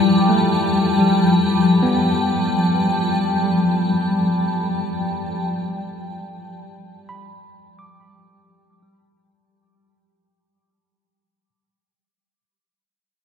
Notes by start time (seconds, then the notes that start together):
Already playing: F3 G3 E4 G5 A5
0.29 A3
0.99 G3
1.83 B3
7.09 B5
7.79 D6
8.83 G3